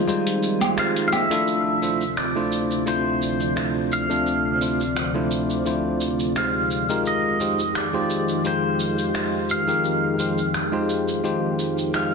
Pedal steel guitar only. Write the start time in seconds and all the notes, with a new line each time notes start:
Already playing: G#5
0.79 F5
1.08 F5
1.13 E5
2.17 D5
2.88 C5
3.93 F5
6.38 F5
7.07 D#5
7.77 D5
8.47 C5
9.51 F5
11.96 F5